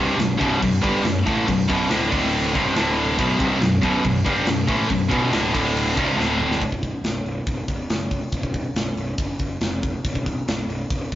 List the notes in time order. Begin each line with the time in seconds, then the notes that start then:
Already playing: C2 G2 C3
0.00 C1
0.17 B0 B1 F#2, snare, crash
0.37 B0 B1 F#2 B2, kick, crash
0.59 B0 B1 F#2, kick, crash
0.81 G1 G2 D3 G3, kick, crash
1.03 B0 B1 F#2, snare, crash
1.26 A1 A2 E3 A3, kick, crash
1.47 B0 B1 F#2, kick, crash
1.68 B0 B1 F#2 B2, kick, crash
1.88 D1 D2 A2 D3, snare, crash
2.10 D1 D2 A2 D3, kick, crash
2.34 crash
2.54 C1 C2 G2 C3, kick, crash
2.76 D1 D2 A2 D3, snare, crash
2.97 crash
3.17 B0 B1 F#2 B2, kick, crash
3.39 C1 C2 G2 C3, kick, crash
3.60 B0 B1 F#2, snare, crash
3.82 B0 B1 F#2 B2, kick, crash
4.03 B0 B1 F#2, kick, crash
4.25 G1 G2 D3 G3, kick, crash
4.46 B0 B1 F#2, snare, crash
4.67 A1 A2 E3 A3, kick, crash
4.89 B0 B1 F#2, kick, crash
5.09 B0 B1 F#2 B2, kick, crash
5.32 D1 D2 A2 D3, snare, crash
5.53 D1 D2 A2 D3, kick, crash
5.77 crash
5.95 C1 C2 G2 C3, kick, crash
6.16 D1 D2 A2 D3, snare
6.40 mid tom
6.51 snare
6.61 B0, kick, open hi-hat
6.72 kick
6.83 kick, open hi-hat
7.04 B0, snare, open hi-hat
7.24 B0, open hi-hat
7.46 B0, kick, open hi-hat
7.68 B0, kick, open hi-hat
7.88 F#1, snare, open hi-hat
8.11 kick, open hi-hat
8.32 B0, kick, open hi-hat
8.43 kick
8.54 kick, open hi-hat
8.75 B0, snare, open hi-hat
8.96 B0, open hi-hat
9.18 F#1, kick, open hi-hat
9.39 F#1, kick, open hi-hat
9.61 F1, snare, open hi-hat
9.83 kick, open hi-hat
10.05 B0, kick, open hi-hat
10.15 kick
10.26 kick, open hi-hat
10.46 B0, snare, open hi-hat
10.68 B0, open hi-hat
10.90 B0, kick, open hi-hat
11.12 B0